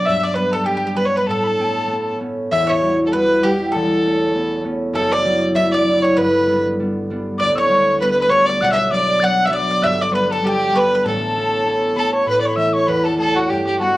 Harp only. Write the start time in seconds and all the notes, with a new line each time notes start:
Already playing: B2 F#3 B3 D4
0.07 G2
0.37 G3 B3 D4
0.66 G3 B3 D4
0.98 G3 B3 D4
1.28 A2
1.58 A3 B3 C#4
1.87 A3 B3 C#4
2.20 A3 B3 C#4
2.51 E1 E2
2.82 G3 E4 F#4
3.13 G3 E4 F#4
3.44 G3 E4 F#5
3.75 E1 E2
4.04 A3 B3 C#4
4.34 A3 B3 C#4
4.64 A3 B3 C#4
4.93 F#1 F#2
5.25 F#3 D4 E4
5.55 F#3 D4 E4
5.84 F#3 D4
5.90 E4
6.17 G1 G2
6.47 G3 B3
6.52 D4
6.79 G3 B3 D4
7.10 G3 B3 D4
7.41 D1 D2
7.69 G3 B3 D4
8.01 G3 B3 D4
8.30 G3 B3 D4
8.61 B1 B2
8.92 F#3 B3 D4
9.21 F#3 B3 D4
9.50 F#3 B3 D4
9.81 G1 G2
10.11 G3 B3 D4
10.42 G3 B3 D4
10.70 G3 B3
10.76 D4
11.05 A1 A2
11.36 A3 B3 C#4
11.65 A3 B3 C#4
11.95 A3 B3 C#4
12.26 A2
12.55 E3 A3 C#4
12.87 E2
13.15 E3 A3
13.21 C#4
13.50 G2
13.79 G3 B3 D4